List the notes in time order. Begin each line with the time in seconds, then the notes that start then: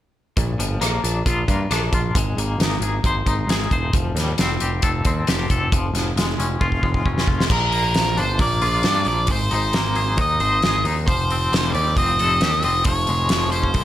0.37 A#1 A#2, kick, closed hi-hat
0.59 G1 F3, closed hi-hat
0.80 A#1 A#3, cross-stick, closed hi-hat
1.04 A#1 D4, closed hi-hat
1.26 A#1 F4, kick, closed hi-hat
1.48 G2 A#3, kick, closed hi-hat
1.71 A#1 D4, cross-stick, closed hi-hat
1.92 A#1 F4, kick, closed hi-hat
2.15 G#1 G#3, kick, closed hi-hat
2.37 G#1 A#3, closed hi-hat
2.58 G#1 D#4, snare, closed hi-hat
2.80 G#1 G#4, closed hi-hat
3.04 G#1 C5, kick, closed hi-hat
3.26 G#1 D#4, kick, closed hi-hat
3.47 G#1 G#4, snare, closed hi-hat
3.71 E1 C5, kick, closed hi-hat
3.93 F1 F3, kick, closed hi-hat
4.15 D#2 G3, snare, closed hi-hat
4.38 F1 C4, snare, closed hi-hat
4.60 F1 G4, closed hi-hat
4.82 F1 A4, kick, closed hi-hat
5.05 D#2 C4, kick, closed hi-hat
5.27 F1 G4, snare, closed hi-hat
5.50 F1 A4, kick, closed hi-hat
5.72 F1 F3, kick, closed hi-hat
5.93 F1 F3, snare, closed hi-hat
6.16 F1 G#3, snare, closed hi-hat
6.38 F1 C#4, closed hi-hat
6.61 F1 F4, kick
6.72 kick
6.83 F1 G#3, kick
6.94 kick
7.05 F1 C#4, kick
7.18 snare
7.27 F1 F4, kick
7.40 snare
7.50 A#1 A#2 A#4, kick, crash
7.72 A#3, open hi-hat
7.94 A#1 F3, snare, open hi-hat
8.17 G1 D4 C5, open hi-hat
8.39 A#1 A#3 D5, kick, open hi-hat
8.62 A#1 F4, open hi-hat
8.83 G2 D4, snare, open hi-hat
9.05 A#1 A#3 D5, open hi-hat
9.27 G#1 G#3, kick, open hi-hat
9.32 C5
9.51 G#1 D#4 C5, open hi-hat
9.73 G#1 A#3, snare, open hi-hat
9.95 G#4, open hi-hat
10.17 D#2 D#4 D#5, kick, open hi-hat
10.40 G#1 C5, open hi-hat
10.62 G#1 G#4, snare, open hi-hat
10.85 D#2 D#4, open hi-hat
11.07 F1 F3 C5, kick, open hi-hat
11.30 C4, open hi-hat
11.52 F1 G3, snare, open hi-hat
11.74 D#2 G4 D5, open hi-hat
11.96 F1 C4 D#5, kick, open hi-hat
12.19 F1 A4, open hi-hat
12.41 D#2 G4, snare, open hi-hat
12.63 F1 C4 D#5, open hi-hat
12.85 F1 F3 C#5, kick, open hi-hat
13.07 F1 G#3, open hi-hat
13.29 F1 F3, snare, open hi-hat
13.52 C#4 C5, open hi-hat
13.63 kick
13.74 C2 G#3, kick, open hi-hat